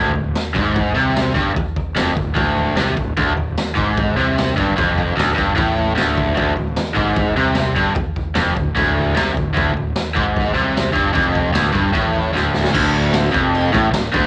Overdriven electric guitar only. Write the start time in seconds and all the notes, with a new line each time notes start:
Already playing: D2
0.14 D2
0.54 G#2
0.95 C3
1.34 G2
1.55 muted overdriven electric guitar stroke
1.96 F2
2.15 D2
2.35 D2
2.77 C3
2.96 D2
3.17 D2
3.35 D2
3.75 G#2
4.17 C3
4.56 G2
4.76 F2
5.16 D2
5.35 G2
5.55 A2
5.96 D2
6.35 D2
6.56 D2
6.95 G#2
7.36 C3
7.75 G2
7.95 muted overdriven electric guitar stroke
8.35 F2
8.56 D2
8.75 D2
9.16 C3
9.34 D2
9.54 D2
9.74 D2
10.14 G#2
10.54 C3
10.93 G2
11.13 F2
11.53 D2
11.72 G2
11.93 A2
12.33 D2
12.73 D2
13.32 F2
13.73 A2
13.91 D2
14.12 D2